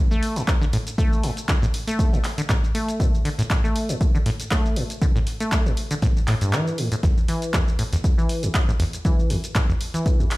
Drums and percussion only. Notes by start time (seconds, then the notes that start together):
0.12 shaker
0.23 open hi-hat
0.36 closed hi-hat, shaker
0.48 kick, clap, closed hi-hat, shaker
0.62 shaker
0.73 open hi-hat
0.87 closed hi-hat, shaker
0.98 kick, closed hi-hat, shaker
1.13 shaker
1.23 open hi-hat
1.37 closed hi-hat, shaker
1.49 kick, clap, closed hi-hat, shaker
1.63 shaker
1.74 open hi-hat
1.88 closed hi-hat, shaker
1.99 kick, closed hi-hat, shaker
2.14 shaker
2.24 clap, open hi-hat
2.38 closed hi-hat, shaker
2.49 kick, clap, closed hi-hat, shaker
2.64 shaker
2.75 open hi-hat
2.89 closed hi-hat, shaker
3.00 kick, closed hi-hat, shaker
3.14 shaker
3.25 open hi-hat
3.39 closed hi-hat, shaker
3.50 kick, clap, closed hi-hat, shaker
3.65 shaker
3.76 open hi-hat
3.89 closed hi-hat, shaker
4.01 kick, closed hi-hat, shaker
4.15 shaker
4.26 open hi-hat
4.40 closed hi-hat, shaker
4.51 kick, clap, closed hi-hat, shaker
4.66 shaker
4.76 open hi-hat
4.90 closed hi-hat, shaker
5.02 kick, closed hi-hat, shaker
5.16 shaker
5.27 open hi-hat
5.40 closed hi-hat, shaker
5.52 kick, clap, closed hi-hat, shaker
5.66 shaker
5.77 open hi-hat
5.91 closed hi-hat, shaker
6.02 kick, closed hi-hat, shaker
6.17 shaker
6.28 clap, open hi-hat
6.41 closed hi-hat, shaker
6.53 clap, closed hi-hat, shaker
6.67 shaker
6.78 open hi-hat
6.92 closed hi-hat, shaker
7.03 kick, closed hi-hat, shaker
7.18 shaker
7.28 open hi-hat
7.42 closed hi-hat, shaker
7.54 kick, clap, closed hi-hat, shaker
7.68 shaker
7.79 open hi-hat
7.93 closed hi-hat, shaker
8.04 kick, closed hi-hat, shaker
8.19 shaker
8.29 open hi-hat
8.43 closed hi-hat, shaker
8.55 kick, clap, closed hi-hat, shaker
8.69 shaker
8.80 open hi-hat
8.93 closed hi-hat, shaker
9.05 kick, closed hi-hat, shaker
9.19 shaker
9.30 open hi-hat
9.44 closed hi-hat, shaker
9.55 kick, clap, closed hi-hat, shaker
9.70 shaker
9.81 open hi-hat
9.94 closed hi-hat, shaker
10.06 kick, closed hi-hat, shaker
10.20 shaker
10.31 clap, open hi-hat